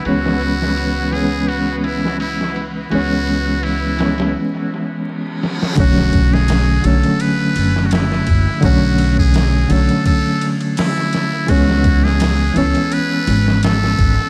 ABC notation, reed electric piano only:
X:1
M:4/4
L:1/8
Q:"Swing 16ths" 1/4=84
K:Bdor
V:1 name="Reed electric piano"
[E,G,B,C]3 [E,G,B,C]4- [E,G,B,C] | [E,G,B,C]3 [E,G,B,C]4- [E,G,B,C] | [D,F,A,C]3 [D,F,A,C]4- [D,F,A,C] | [D,F,A,C]3 [D,F,A,C]4- [D,F,A,C] |
[E,G,B,C]3 [E,B,C]4- [E,B,C] |]